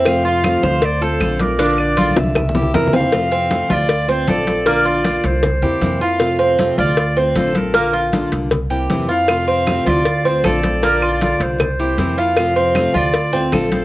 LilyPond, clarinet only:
\new Staff \with { instrumentName = "Clarinet" } { \time 4/4 \key f \major \tempo 4 = 156 f''8 f''4. d''8 c''4 bes'8~ | bes'8 d''4 e''2 f''8~ | f''4. d''4 c''8 d''4 | d''4. c''2 f''8~ |
f''4 r8 d''4 c''8 c''8 bes'8~ | bes'4 r2 r8 f''8~ | f''4. d''4 c''8 d''4 | d''4 d''8 c''2 f''8~ |
f''4. d''4. r8 c''8 | }